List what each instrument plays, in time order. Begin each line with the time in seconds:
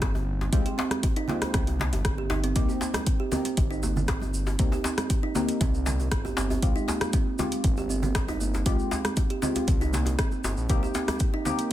Already playing: analog synth bass G1, synth stab G#3 C4 F4 G4
0.02 kalimba C4, kick, cross-stick, closed hi-hat, djembe slap
0.14 muted conga, high conga, djembe tone
0.41 djembe slap
0.52 analog synth bass C2, synth stab G#3 C4 F4 G4, kick, closed hi-hat, muted conga, djembe tone, high conga
0.66 kalimba G4, closed hi-hat
0.78 kalimba C4, djembe slap, djembe tone
0.91 kalimba C4, cross-stick, closed hi-hat, high conga
1.03 kick, closed hi-hat, djembe tone
1.16 kalimba D#4, closed hi-hat
1.28 synth stab G#3 C4 F4 G4, kalimba A#3, djembe slap, high conga, low conga
1.41 cross-stick, closed hi-hat, muted conga, djembe tone
1.54 analog synth bass C2, kalimba C4, kick, cross-stick, closed hi-hat, low conga
1.67 closed hi-hat, djembe tone
1.79 muted conga, djembe slap, high conga, low conga
1.93 analog synth bass G1, closed hi-hat, djembe tone
2.05 kick, cross-stick, closed hi-hat
2.18 kalimba G4, muted conga
2.30 kalimba D#4, djembe slap, djembe tone
2.44 kalimba C4, closed hi-hat
2.55 analog synth bass C2, synth stab A#3 C4 D#4 G4, kalimba C4, kick, closed hi-hat, muted conga, high conga, shaker
2.69 djembe tone, shaker
2.81 djembe slap, shaker
2.94 cross-stick, closed hi-hat, high conga, djembe tone, shaker
3.06 kick, closed hi-hat, muted conga, shaker
3.20 kalimba G4
3.32 synth stab A#3 C4 D#4 G4, kalimba C4, djembe slap, high conga, djembe tone, low conga, shaker
3.45 kalimba C4, closed hi-hat, muted conga, shaker
3.57 analog synth bass G1, kick, closed hi-hat, djembe tone, shaker
3.71 kalimba D#4, shaker
3.83 kalimba A#3, muted conga, djembe tone, shaker
3.96 high conga, low conga, shaker
4.08 kalimba C4, kick, cross-stick, closed hi-hat, djembe slap, shaker
4.20 muted conga, high conga, djembe tone, shaker
4.34 shaker
4.47 djembe slap, djembe tone, shaker
4.59 synth stab A#3 C4 D#4 G4, kick, closed hi-hat, muted conga, high conga, shaker
4.72 kalimba G4, djembe tone, shaker
4.84 kalimba C4, djembe slap, shaker
4.98 kalimba C4, cross-stick, closed hi-hat, high conga, shaker
5.10 kick, closed hi-hat, muted conga, djembe tone, shaker
5.23 kalimba D#4
5.35 kalimba A#3, synth stab A#3 C4 D#4 G4, djembe slap, djembe tone, low conga, shaker
5.48 closed hi-hat, muted conga, shaker
5.61 analog synth bass C2, kalimba C4, kick, closed hi-hat, djembe tone, low conga, shaker
5.74 shaker
5.86 djembe slap, muted conga, high conga, low conga, shaker
6.00 djembe tone, shaker
6.12 analog synth bass G1, kick, cross-stick, closed hi-hat, shaker
6.25 kalimba G4, muted conga, djembe tone, shaker
6.37 analog synth bass G1, kalimba C4, djembe slap, shaker
6.50 kalimba C4, djembe tone, shaker
6.62 analog synth bass C2, synth stab G#3 C4 F4 G4, kick, closed hi-hat, muted conga, high conga, shaker
6.76 kalimba D#4, shaker
6.88 kalimba A#3, djembe slap, djembe tone, shaker
7.01 cross-stick, closed hi-hat, high conga, shaker
7.13 kalimba C4, kick, closed hi-hat, muted conga, djembe tone, shaker
7.39 synth stab G#3 C4 F4 G4, djembe slap, high conga, djembe tone, low conga, shaker
7.52 closed hi-hat, muted conga, shaker
7.64 analog synth bass G1, kick, closed hi-hat, shaker
7.77 kalimba G4, djembe tone, shaker
7.89 kalimba C4, muted conga, shaker
8.03 kalimba C4, high conga, djembe tone, low conga, shaker
8.15 kick, cross-stick, closed hi-hat, djembe slap, shaker
8.28 kalimba D#4, muted conga, djembe tone, high conga, shaker
8.40 kalimba A#3, shaker
8.54 djembe slap, shaker
8.66 synth stab G#3 C4 F4 G4, kalimba C4, kick, closed hi-hat, muted conga, djembe tone, high conga, shaker
8.79 shaker
8.91 djembe slap, djembe tone, shaker
9.05 cross-stick, closed hi-hat, high conga, shaker
9.16 kick, closed hi-hat, muted conga, djembe tone, shaker
9.30 kalimba G4, closed hi-hat
9.42 synth stab G#3 C4 F4 G4, kalimba C4, djembe slap, low conga, shaker
9.55 kalimba C4, closed hi-hat, muted conga, djembe tone, shaker
9.67 analog synth bass C2, kick, closed hi-hat, low conga, shaker
9.81 kalimba D#4, djembe tone, shaker
9.93 kalimba A#3, muted conga, djembe slap, high conga, low conga, shaker
10.06 closed hi-hat, djembe tone, shaker
10.19 kalimba C4, kick, cross-stick, closed hi-hat, shaker
10.31 muted conga, shaker
10.44 analog synth bass G1, djembe slap, djembe tone, shaker
10.57 analog synth bass A#1, shaker
10.69 synth stab A#3 C4 D#4 G4, kick, closed hi-hat, muted conga, high conga, shaker
10.83 kalimba G4, djembe tone, shaker
10.94 kalimba C4, djembe slap, shaker
11.08 kalimba C4, cross-stick, closed hi-hat, djembe tone, high conga, shaker
11.19 kick, closed hi-hat, shaker
11.34 kalimba D#4
11.45 kalimba A#3, synth stab A#3 C4 D#4 G4, djembe slap, djembe tone, high conga, low conga, shaker
11.59 closed hi-hat, muted conga, shaker